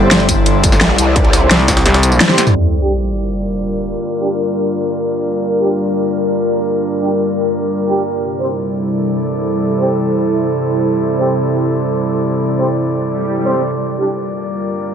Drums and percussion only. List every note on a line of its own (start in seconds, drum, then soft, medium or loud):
0.11 snare loud
0.11 closed hi-hat medium
0.11 ride medium
0.20 ride soft
0.29 kick medium
0.29 closed hi-hat medium
0.29 ride medium
0.29 tambourine medium
0.46 closed hi-hat medium
0.46 ride medium
0.64 kick loud
0.64 closed hi-hat loud
0.64 ride medium
0.64 tambourine medium
0.72 snare soft
0.72 tambourine soft
0.81 snare loud
0.81 closed hi-hat medium
0.81 ride medium
0.98 closed hi-hat medium
0.98 ride medium
0.98 tambourine medium
1.16 kick loud
1.16 closed hi-hat medium
1.16 ride medium
1.25 ride soft
1.33 snare loud
1.33 closed hi-hat loud
1.33 ride medium
1.33 tambourine medium
1.51 snare loud
1.51 closed hi-hat medium
1.51 ride medium
1.59 snare soft
1.68 kick medium
1.68 snare loud
1.68 snare soft
1.68 closed hi-hat medium
1.68 ride medium
1.68 tambourine medium
1.77 snare loud
1.77 ride medium
1.86 snare loud
1.86 snare soft
1.86 closed hi-hat medium
1.86 ride medium
1.94 snare loud
1.94 ride medium
2.03 closed hi-hat loud
2.03 ride medium
2.03 tambourine medium
2.12 ride soft
2.12 tambourine soft
2.21 snare loud
2.21 closed hi-hat medium
2.21 high tom medium
2.21 ride medium
2.21 tambourine soft
2.29 snare medium
2.38 snare medium
2.38 closed hi-hat loud
2.38 ride medium
2.38 tambourine medium
2.47 snare soft
2.47 mid tom medium
2.47 tambourine soft